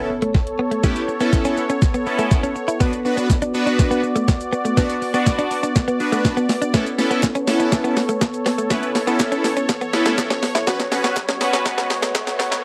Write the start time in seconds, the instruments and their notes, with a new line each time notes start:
Already playing: analog synth pad B3 A4 C#5, impact
0.10 muted clean electric guitar stroke
0.22 clean electric guitar A3, closed hi-hat
0.34 muted clean electric guitar stroke, kick, snare
0.47 closed hi-hat
0.59 clean electric guitar B3
0.71 clean electric guitar A3, closed hi-hat
0.83 clean electric guitar A3, analog polysynth B3 C#4 E4 G4, kick, snare, shaker
0.96 closed hi-hat, shaker
1.08 muted clean electric guitar stroke, shaker
1.20 analog polysynth B3 C#4 E4 A4, clean electric guitar B3, closed hi-hat, shaker
1.33 kick, snare, shaker
1.45 clean electric guitar C#4, closed hi-hat, shaker
1.57 muted clean electric guitar stroke, shaker
1.70 clean electric guitar C#4, closed hi-hat, shaker
1.82 kick, snare, shaker
1.94 clean electric guitar B3, closed hi-hat, shaker
2.06 analog polysynth B3 C#4 E4 A4, muted clean electric guitar stroke, shaker
2.19 clean electric guitar A3, closed hi-hat, shaker
2.31 kick, snare, shaker
2.43 clean electric guitar C#4, closed hi-hat, shaker
2.56 muted clean electric guitar stroke, shaker
2.68 clean electric guitar E4, closed hi-hat, shaker
2.80 analog polysynth B3 D4 F#4 B4, clean electric guitar B3, analog synth pad F#4 D5, kick, snare, shaker
2.93 closed hi-hat, shaker
3.05 analog polysynth B3 D4 F#4 B4, muted clean electric guitar stroke, shaker
3.17 clean electric guitar B3, closed hi-hat, shaker
3.30 kick, snare, shaker
3.42 clean electric guitar D4, closed hi-hat, shaker
3.54 analog polysynth B3 D4 F#4 B4, muted clean electric guitar stroke, shaker
3.66 clean electric guitar D4, closed hi-hat, shaker
3.79 kick, snare, shaker
3.91 clean electric guitar B3, closed hi-hat, shaker
4.03 muted clean electric guitar stroke, shaker
4.16 clean electric guitar A3, closed hi-hat, shaker
4.28 muted clean electric guitar stroke, kick, snare, shaker
4.41 closed hi-hat, shaker
4.53 clean electric guitar B3, shaker
4.65 clean electric guitar A3, closed hi-hat, shaker
4.77 analog polysynth B3 D4 F#4 D5, clean electric guitar B3, kick, snare, shaker
4.90 closed hi-hat, shaker
5.02 muted clean electric guitar stroke, open hi-hat, shaker
5.14 analog polysynth B3 D4 F#4 D5, clean electric guitar B3, closed hi-hat, shaker
5.26 kick, snare, shaker
5.39 clean electric guitar D4, closed hi-hat, shaker
5.51 muted clean electric guitar stroke, open hi-hat, shaker
5.63 clean electric guitar D4, closed hi-hat, shaker
5.76 kick, snare, shaker
5.88 clean electric guitar B3, closed hi-hat, shaker
6.00 analog polysynth B3 D4 F#4 B4, muted clean electric guitar stroke, open hi-hat, shaker
6.12 clean electric guitar A3, closed hi-hat, shaker
6.25 kick, snare, shaker
6.37 clean electric guitar B3, closed hi-hat, shaker
6.49 muted clean electric guitar stroke, snare, open hi-hat, shaker
6.62 clean electric guitar D4, closed hi-hat, shaker
6.74 clean electric guitar A3, analog polysynth B3 C#4 E4 A4, analog synth pad A4 C#5, kick, snare, riser, shaker
6.87 closed hi-hat, shaker
6.98 analog polysynth B3 C#4 E4 A4, muted clean electric guitar stroke, snare, open hi-hat, shaker
7.11 clean electric guitar B3, closed hi-hat, shaker
7.23 kick, snare, clap, shaker
7.35 clean electric guitar C#4, closed hi-hat, shaker
7.47 analog polysynth B3 C#4 E4 A4, muted clean electric guitar stroke, snare, open hi-hat, shaker
7.60 clean electric guitar C#4, closed hi-hat, shaker
7.72 kick, snare, clap, shaker
7.84 clean electric guitar B3, closed hi-hat, shaker
7.96 muted clean electric guitar stroke, snare, open hi-hat, shaker
8.09 clean electric guitar A3, closed hi-hat, shaker
8.21 muted clean electric guitar stroke, kick, snare, clap, shaker
8.34 closed hi-hat, shaker
8.46 clean electric guitar B3, snare, open hi-hat, shaker
8.58 clean electric guitar A3, closed hi-hat, shaker
8.70 clean electric guitar A3, analog polysynth B3 C#4 E4 B4, kick, snare, shaker
8.83 closed hi-hat, shaker
8.95 muted clean electric guitar stroke, snare, open hi-hat, shaker
9.07 analog polysynth B3 C#4 E4 A4, clean electric guitar B3, closed hi-hat, shaker
9.20 kick, snare, clap, shaker
9.32 clean electric guitar C#4, closed hi-hat, shaker
9.44 muted clean electric guitar stroke, snare, open hi-hat, shaker
9.57 clean electric guitar C#4, closed hi-hat, shaker
9.69 kick, snare, clap, shaker
9.81 clean electric guitar B3, closed hi-hat, shaker
9.93 analog polysynth B3 C#4 E4 A4, muted clean electric guitar stroke, snare, open hi-hat, shaker
10.06 clean electric guitar A3, snare, closed hi-hat, shaker
10.18 kick, snare, clap, shaker
10.30 clean electric guitar C#4, snare, closed hi-hat, shaker
10.43 muted clean electric guitar stroke, snare, open hi-hat, shaker
10.55 clean electric guitar E4, snare, closed hi-hat, shaker
10.67 analog polysynth B3 C#4 F#4 B4, analog synth pad B3 F#4, clean electric guitar F#4, kick, snare, shaker
10.80 snare, closed hi-hat, shaker
10.91 analog polysynth B3 C#4 F#4 B4, muted clean electric guitar stroke, snare, open hi-hat, shaker
11.04 clean electric guitar B3, snare, closed hi-hat, shaker
11.16 kick, snare, clap, shaker
11.29 clean electric guitar C#4, snare, closed hi-hat, shaker
11.40 analog polysynth B3 C#4 F#4 B4, muted clean electric guitar stroke, snare, open hi-hat, shaker
11.53 clean electric guitar C#4, snare, closed hi-hat, shaker
11.65 kick, snare, clap, shaker
11.78 clean electric guitar B3, snare, closed hi-hat, shaker
11.90 muted clean electric guitar stroke, snare, open hi-hat, shaker
12.02 clean electric guitar A3, snare, closed hi-hat, shaker
12.15 muted clean electric guitar stroke, kick, snare, clap, shaker
12.27 snare, closed hi-hat, shaker
12.39 clean electric guitar B3, snare, open hi-hat, shaker
12.52 clean electric guitar A3, snare, closed hi-hat, shaker